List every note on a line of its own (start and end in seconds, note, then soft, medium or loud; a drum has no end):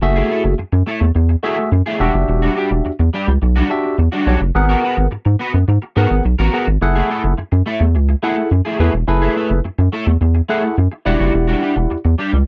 0.02 0.22 F#1 loud
0.02 0.53 A3 loud
0.02 0.53 F#4 medium
0.02 0.53 G#4 medium
0.02 0.53 E5 loud
0.02 muted clean electric guitar stroke soft
0.16 0.29 A3 medium
0.16 0.30 E4 medium
0.16 0.31 G#4 medium
0.30 0.44 A3 medium
0.30 0.45 E4 medium
0.30 0.44 A4 medium
0.45 0.55 F#1 loud
0.45 muted clean electric guitar stroke soft
0.58 0.65 F#2 soft
0.58 muted clean electric guitar stroke soft
0.72 0.83 F#2 loud
0.72 muted clean electric guitar stroke medium
0.87 1.05 A3 medium
0.87 1.01 E4 medium
0.87 1.01 A4 medium
1.01 1.11 E2 medium
1.01 muted clean electric guitar stroke soft
1.15 1.36 E2 medium
1.15 muted clean electric guitar stroke soft
1.29 muted clean electric guitar stroke soft
1.43 1.69 A3 medium
1.43 1.61 A3 medium
1.43 1.58 E4 medium
1.43 1.69 F#4 medium
1.43 1.69 G#4 medium
1.43 1.57 G#4 medium
1.43 1.69 E5 loud
1.58 muted clean electric guitar stroke medium
1.72 1.82 F#2 loud
1.72 muted clean electric guitar stroke soft
1.86 1.99 A3 medium
1.86 2.00 E4 medium
1.86 2.01 G#4 medium
2.00 2.10 E1 loud
2.00 2.14 G3 medium
2.00 2.91 D4 medium
2.00 2.14 D4 medium
2.00 2.91 F#4 medium
2.00 2.13 F#4 medium
2.00 2.91 G4 medium
2.00 2.91 E5 loud
2.14 2.25 F#1 loud
2.14 muted clean electric guitar stroke medium
2.28 2.49 E1 loud
2.28 muted clean electric guitar stroke soft
2.42 2.55 G3 medium
2.42 2.56 D4 medium
2.42 2.58 F#4 medium
2.56 2.71 G3 medium
2.56 2.71 D4 medium
2.56 2.71 G4 medium
2.71 2.81 E1 medium
2.71 muted clean electric guitar stroke soft
2.85 2.91 E2 medium
2.85 muted clean electric guitar stroke soft
2.99 3.10 E2 loud
2.99 muted clean electric guitar stroke soft
3.14 3.31 G3 medium
3.14 3.28 D4 medium
3.14 3.27 G4 loud
3.28 3.38 C#2 medium
3.28 muted clean electric guitar stroke soft
3.42 3.63 B1 loud
3.42 muted clean electric guitar stroke soft
3.56 3.69 G3 medium
3.56 3.69 D4 medium
3.56 3.70 F#4 medium
3.70 3.95 D4 medium
3.70 3.96 F#4 medium
3.70 3.96 G4 medium
3.70 3.96 E5 loud
3.70 muted clean electric guitar stroke soft
3.84 muted clean electric guitar stroke soft
3.98 4.09 E2 loud
3.98 muted clean electric guitar stroke soft
4.12 4.25 G3 medium
4.12 4.26 D4 medium
4.12 4.27 F#4 medium
4.27 4.37 B1 loud
4.27 4.41 G3 medium
4.27 4.39 D4 medium
4.27 4.41 D4 medium
4.27 4.39 F#4 medium
4.27 4.40 F#4 medium
4.27 4.40 G4 medium
4.27 4.40 C#5 medium
4.41 4.51 F#1 medium
4.41 muted clean electric guitar stroke medium
4.55 4.75 G#1 loud
4.55 5.06 B3 loud
4.55 5.06 G#4 medium
4.55 5.06 A#4 medium
4.55 5.06 F#5 loud
4.55 muted clean electric guitar stroke soft
4.69 4.82 B3 medium
4.69 4.83 F#4 medium
4.69 4.84 A#4 medium
4.83 4.97 B3 medium
4.83 4.98 F#4 medium
4.83 4.97 B4 medium
4.97 5.08 G#1 medium
4.97 muted clean electric guitar stroke soft
5.11 5.17 G#2 medium
5.11 muted clean electric guitar stroke soft
5.25 5.36 G#2 loud
5.25 muted clean electric guitar stroke soft
5.39 5.57 B3 medium
5.39 5.53 F#4 medium
5.39 5.53 B4 medium
5.53 5.64 F#2 medium
5.53 muted clean electric guitar stroke soft
5.68 5.78 G#2 loud
5.68 muted clean electric guitar stroke soft
5.82 muted clean electric guitar stroke soft
5.96 6.07 G#2 medium
5.96 6.14 B3 medium
5.96 6.22 B3 medium
5.96 6.10 F#4 medium
5.96 6.22 G#4 medium
5.96 6.22 A#4 medium
5.96 6.09 A#4 medium
5.96 6.22 F#5 medium
6.10 6.21 G#1 medium
6.10 muted clean electric guitar stroke medium
6.25 6.35 B1 medium
6.25 muted clean electric guitar stroke soft
6.39 6.49 A1 medium
6.39 6.51 B3 medium
6.39 6.52 F#4 medium
6.39 6.53 A#4 medium
6.53 6.67 B3 medium
6.53 6.66 B3 medium
6.53 6.67 F#4 medium
6.53 6.66 G#4 medium
6.53 6.66 A#4 medium
6.53 6.66 F#5 medium
6.67 6.78 G#1 loud
6.67 muted clean electric guitar stroke soft
6.81 7.02 F#1 loud
6.81 7.32 E4 medium
6.81 7.32 G#4 medium
6.81 7.33 A4 medium
6.81 7.33 F#5 loud
6.81 muted clean electric guitar stroke soft
6.95 7.08 A3 medium
6.95 7.09 E4 medium
6.95 7.11 G#4 medium
7.10 7.24 A3 medium
7.10 7.24 E4 medium
7.10 7.23 A4 medium
7.24 7.34 F#1 medium
7.24 muted clean electric guitar stroke soft
7.38 7.44 F#2 soft
7.38 muted clean electric guitar stroke soft
7.52 7.62 F#2 loud
7.52 muted clean electric guitar stroke soft
7.66 7.84 A3 medium
7.66 7.80 E4 medium
7.66 7.80 A4 medium
7.80 7.96 E2 loud
7.80 muted clean electric guitar stroke soft
7.95 8.15 C#2 loud
7.95 muted clean electric guitar stroke soft
8.09 muted clean electric guitar stroke medium
8.23 8.40 A3 medium
8.23 8.48 E4 medium
8.23 8.37 E4 medium
8.23 8.48 G#4 medium
8.23 8.36 G#4 medium
8.23 8.49 A4 medium
8.23 8.49 F#5 medium
8.37 muted clean electric guitar stroke soft
8.51 8.62 F#2 medium
8.51 muted clean electric guitar stroke soft
8.65 8.78 A3 medium
8.65 8.79 E4 medium
8.65 8.80 G#4 medium
8.79 8.90 E2 medium
8.79 8.93 A3 medium
8.79 8.92 E4 medium
8.79 8.94 E4 medium
8.79 8.92 G#4 medium
8.79 8.93 G#4 medium
8.79 8.92 A4 medium
8.79 8.93 B4 medium
8.94 9.04 E1 medium
8.94 muted clean electric guitar stroke soft
9.08 9.28 F#1 loud
9.08 9.58 E4 medium
9.08 9.59 G#4 medium
9.08 9.59 A4 medium
9.08 9.59 B4 loud
9.08 muted clean electric guitar stroke soft
9.22 9.35 A3 medium
9.22 9.36 E4 medium
9.22 9.37 G#4 medium
9.36 9.50 A3 medium
9.36 9.50 E4 medium
9.36 9.50 A4 medium
9.50 9.61 F#1 loud
9.50 muted clean electric guitar stroke soft
9.65 9.70 F#2 medium
9.65 muted clean electric guitar stroke soft
9.78 9.89 F#2 loud
9.78 muted clean electric guitar stroke medium
9.92 10.10 A3 medium
9.92 10.07 E4 medium
9.92 10.07 A4 loud
10.07 10.17 E2 medium
10.07 muted clean electric guitar stroke soft
10.21 10.41 E2 medium
10.21 muted clean electric guitar stroke soft
10.35 muted clean electric guitar stroke soft
10.49 10.67 A3 medium
10.49 10.75 E4 medium
10.49 10.63 E4 medium
10.49 10.75 G#4 medium
10.49 10.62 G#4 medium
10.49 10.75 A4 medium
10.49 10.75 F#5 loud
10.63 muted clean electric guitar stroke soft
10.77 10.88 F#2 loud
10.77 muted clean electric guitar stroke soft
10.91 muted clean electric guitar stroke soft
11.06 11.16 E1 loud
11.06 11.20 G3 medium
11.06 11.19 D4 medium
11.06 11.96 E4 medium
11.06 11.19 F#4 medium
11.06 11.97 G4 medium
11.06 11.97 D5 medium
11.06 11.97 F#5 loud
11.20 11.30 F#1 loud
11.20 11.32 G3 medium
11.20 11.33 D4 medium
11.20 11.34 F#4 medium
11.34 11.55 E1 loud
11.34 muted clean electric guitar stroke soft
11.47 11.61 G3 medium
11.47 11.61 D4 medium
11.47 11.63 F#4 medium
11.62 11.76 G3 medium
11.62 11.76 D4 medium
11.62 11.76 G4 medium
11.76 11.87 E1 loud
11.76 muted clean electric guitar stroke medium
11.90 11.97 E2 soft
11.90 muted clean electric guitar stroke soft
12.05 12.15 E2 loud
12.05 muted clean electric guitar stroke soft
12.18 12.37 G3 medium
12.18 12.33 D4 medium
12.18 12.32 G4 medium
12.33 12.44 C#2 medium
12.33 muted clean electric guitar stroke soft